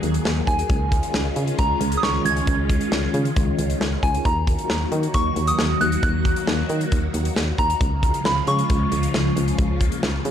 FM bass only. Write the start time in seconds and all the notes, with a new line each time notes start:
0.03 D#2
0.25 D#2
0.47 D#2
0.70 C#2
1.14 C#2
1.36 C#3
1.59 C#2
1.81 C#2
2.03 C#2
2.25 C#2
2.47 C#2
2.92 C#2
3.14 C#3
3.37 C#2
3.59 C#2
3.81 C#2
4.03 C#2
4.25 D#2
4.70 D#2
4.92 D#3
5.14 D#2
5.36 D#2
5.59 D#2
5.81 D#2
6.03 D#2
6.48 D#2
6.70 D#3
6.92 D#2
7.14 D#2
7.36 D#2
7.58 D#2
7.81 C#2
8.25 C#2
8.48 C#3
8.70 C#2
8.92 C#2
9.14 C#2
9.37 C#2
9.59 C#2
10.03 C#2
10.25 C#3